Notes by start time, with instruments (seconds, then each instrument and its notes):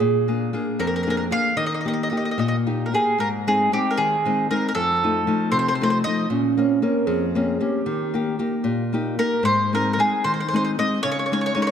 Already playing: soft synth lead G#4
0.00 nylon-string guitar A#2
0.28 nylon-string guitar A#3 D4 G#4
0.53 nylon-string guitar A#3 D4 G#4
0.79 nylon-string guitar F2, mandolin A#4
0.87 mandolin A#4
0.96 mandolin A#4
1.03 nylon-string guitar A#3, mandolin A#4
1.07 nylon-string guitar D4 G#4, mandolin A#4
1.17 mandolin A#4
1.31 nylon-string guitar A#3 D4 G#4, mandolin F5
1.57 nylon-string guitar D#3, mandolin D#5
1.66 mandolin D#5
1.74 mandolin D#5
1.81 mandolin D#5
1.85 nylon-string guitar A#3 D#4 G4, mandolin D#5
1.93 mandolin D#5
2.03 mandolin D#5
2.10 nylon-string guitar A#3 D#4 G4, mandolin D#5
2.17 mandolin D#5
2.25 mandolin D#5
2.31 mandolin D#5
2.38 nylon-string guitar A#2, mandolin D#5
2.48 mandolin D#5
2.67 nylon-string guitar A#3 D#4 G4
2.86 mandolin A#4
2.92 nylon-string guitar A#3 D#4 G4, mandolin G#4
3.18 nylon-string guitar G#2, mandolin A#4
3.47 nylon-string guitar G#3 C4 D#4, mandolin G#4
3.72 nylon-string guitar G#3 C4 D#4, mandolin G4
3.91 mandolin A#4
3.97 nylon-string guitar D#3, mandolin G#4
4.25 nylon-string guitar G#3 C4 D#4
4.50 nylon-string guitar G#3 C4 D#4, mandolin A#4
4.68 mandolin A#4
4.75 nylon-string guitar F2, mandolin A4
5.03 nylon-string guitar F3 A3 D#4
5.27 nylon-string guitar F3 A3 D#4
5.52 nylon-string guitar C3, mandolin C5
5.59 mandolin C5
5.68 mandolin C5
5.75 mandolin C5
5.81 nylon-string guitar F3 A3 D#4, mandolin C5
5.90 mandolin C5
6.04 nylon-string guitar F3 A3 D#4, mandolin D#5
6.30 nylon-string guitar A#2, soft synth lead C#4
6.57 nylon-string guitar A#3 C4 C#4
6.82 nylon-string guitar A#3 C4 C#4, soft synth lead A#4
7.06 nylon-string guitar F2, soft synth lead G#4
7.35 nylon-string guitar A#3 C4 C#4
7.60 nylon-string guitar A#3 C4 C#4, soft synth lead G4
7.86 nylon-string guitar D#3
8.14 nylon-string guitar A#3 D#4 G4
8.39 nylon-string guitar A#3 D#4 G4
8.64 nylon-string guitar A#2
8.93 nylon-string guitar A#3 D#4 G4
9.19 nylon-string guitar A#3 D#4 G4, mandolin A#4
9.43 nylon-string guitar G#2, mandolin C5
9.73 nylon-string guitar G#3 C4 D#4, mandolin A#4
9.93 mandolin A#4
9.98 nylon-string guitar G#3 C4 D#4, mandolin G#4
10.24 nylon-string guitar D#3, mandolin C5
10.34 mandolin C5
10.40 mandolin C5
10.48 mandolin C5
10.53 nylon-string guitar G#3 C4 D#4, mandolin C5
10.65 mandolin C5
10.79 nylon-string guitar G#3 C4 D#4, mandolin D#5
11.03 nylon-string guitar C#3, mandolin C#5
11.12 mandolin C#5
11.19 mandolin C#5
11.26 mandolin C#5
11.32 nylon-string guitar G#3 C#4 D#4, mandolin C#5
11.41 mandolin C#5
11.46 mandolin C#5
11.55 nylon-string guitar G#3 C#4 D#4, mandolin C#5
11.62 mandolin C#5
11.67 mandolin C#5